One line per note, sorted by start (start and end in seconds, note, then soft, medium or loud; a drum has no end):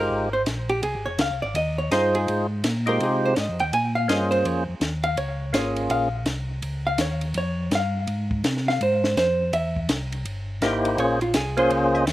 0.00 0.29 G#3 medium
0.00 0.29 D#4 medium
0.00 0.29 F4 medium
0.00 0.29 G4 soft
0.00 0.32 A#4 medium
0.00 0.30 C5 medium
0.10 0.46 G#1 medium
0.33 0.41 C5 medium
0.46 0.82 A#1 medium
0.46 snare medium
0.46 hi-hat pedal soft
0.46 ride medium
0.69 0.83 G4 medium
0.69 ride soft
0.83 0.95 C2 medium
0.83 1.06 G#4 medium
0.83 ride medium
0.95 1.07 G#1 medium
1.06 1.18 F1 medium
1.06 1.19 C#5 medium
1.18 1.31 C#2 medium
1.18 1.42 F5 medium
1.18 snare medium
1.18 hi-hat pedal medium
1.18 ride medium
1.30 1.43 C2 medium
1.42 1.54 G#1 medium
1.42 1.55 D5 medium
1.54 1.90 D#2 medium
1.54 1.78 D#5 medium
1.54 ride medium
1.78 1.92 C#5 medium
1.91 2.27 G2 medium
1.91 2.47 D#4 medium
1.91 2.47 F4 medium
1.91 2.46 G#4 medium
1.91 2.15 C5 medium
1.91 2.47 C5 medium
1.91 snare medium
1.91 hi-hat pedal medium
1.91 ride medium
2.15 2.49 G#4 medium
2.15 ride soft
2.28 2.64 G#2 medium
2.28 ride medium
2.64 2.99 A#2 medium
2.64 snare medium
2.64 hi-hat pedal soft
2.64 ride medium
2.86 3.34 G#3 medium
2.86 3.34 D#4 medium
2.86 3.34 F4 medium
2.86 3.34 G4 medium
2.86 3.01 A#4 medium
2.86 3.35 C5 medium
2.86 ride soft
3.00 3.36 C3 medium
3.00 3.24 G#4 medium
3.00 ride medium
3.25 3.39 C5 medium
3.36 3.49 G#2 medium
3.36 3.60 D#5 medium
3.36 snare medium
3.36 hi-hat pedal soft
3.36 ride medium
3.49 3.61 F2 medium
3.59 3.73 D#2 medium
3.59 3.73 G5 medium
3.59 ride soft
3.73 4.08 A#2 medium
3.73 3.95 G#5 loud
3.73 ride medium
3.95 4.09 F5 loud
4.08 4.44 G2 medium
4.08 4.63 A#3 medium
4.08 4.64 C#4 soft
4.08 4.64 F4 soft
4.08 4.64 G#4 soft
4.08 4.64 C5 medium
4.08 4.30 D#5 medium
4.08 snare medium
4.08 hi-hat pedal medium
4.08 ride medium
4.31 4.46 C5 medium
4.31 ride soft
4.45 4.67 F2 medium
4.45 4.59 C#5 medium
4.45 ride medium
4.68 4.75 F2 soft
4.80 5.16 D#2 medium
4.80 snare medium
4.80 hi-hat pedal soft
4.80 ride medium
5.03 5.17 F5 loud
5.03 ride soft
5.17 5.53 C#2 medium
5.17 5.52 C#5 medium
5.17 ride medium
5.53 5.89 G#1 medium
5.53 6.08 A#3 medium
5.53 6.09 C#4 medium
5.53 6.08 F4 medium
5.53 6.09 G#4 medium
5.53 5.88 C#5 medium
5.53 snare medium
5.53 hi-hat pedal medium
5.53 ride medium
5.76 ride soft
5.90 6.25 A#1 medium
5.90 6.46 F5 medium
5.90 ride medium
6.26 6.62 C2 medium
6.26 snare medium
6.26 hi-hat pedal medium
6.26 ride medium
6.62 6.98 C#2 medium
6.62 ride medium
6.87 6.99 F5 medium
6.98 7.34 D#2 medium
6.98 7.34 C#5 medium
6.98 snare medium
6.98 hi-hat pedal medium
6.98 ride medium
7.21 ride medium
7.34 7.70 F2 medium
7.34 7.70 C#5 medium
7.34 ride medium
7.71 8.07 G2 medium
7.71 snare medium
7.71 hi-hat pedal medium
7.71 ride medium
7.75 8.29 F5 medium
8.07 8.43 G#2 medium
8.07 ride medium
8.31 kick medium
8.44 8.79 C3 medium
8.44 snare medium
8.44 hi-hat pedal medium
8.44 ride medium
8.57 snare soft
8.68 8.81 F5 medium
8.68 snare soft
8.80 9.16 G#2 medium
8.80 9.16 C5 medium
8.80 ride medium
9.04 snare medium
9.16 9.52 F2 medium
9.16 9.51 C5 medium
9.16 snare medium
9.16 hi-hat pedal medium
9.16 ride medium
9.53 9.88 E2 medium
9.53 10.09 E5 medium
9.53 ride medium
9.76 kick soft
9.89 10.25 C2 medium
9.89 snare medium
9.89 hi-hat pedal medium
9.89 ride medium
10.12 ride soft
10.25 10.61 G1 medium
10.25 ride medium
10.61 10.97 G#1 medium
10.61 10.97 A#3 medium
10.61 10.99 D#4 medium
10.61 10.99 E4 medium
10.61 10.99 G4 medium
10.61 10.98 C5 medium
10.61 snare medium
10.61 hi-hat pedal medium
10.61 ride medium
10.85 ride medium
10.98 11.34 A#1 medium
10.98 11.19 A#3 medium
10.98 11.19 C#4 medium
10.98 11.19 F4 medium
10.98 11.20 G#4 medium
10.98 11.20 C5 medium
10.98 11.22 C#5 medium
10.98 ride medium
11.21 11.35 F4 medium
11.21 ride soft
11.34 11.70 C2 medium
11.34 11.58 G#4 medium
11.34 snare medium
11.34 hi-hat pedal medium
11.34 ride medium
11.57 12.05 A#3 medium
11.57 12.05 C#4 medium
11.57 12.05 F4 medium
11.57 12.05 G#4 medium
11.57 11.72 C5 loud
11.57 12.06 C5 medium
11.57 ride soft
11.70 12.07 C#2 medium
11.70 11.95 C#5 medium
11.70 ride medium
11.95 12.08 D#5 loud
12.07 12.13 D#2 medium
12.07 12.13 F5 loud
12.07 snare medium
12.07 hi-hat pedal medium
12.07 ride medium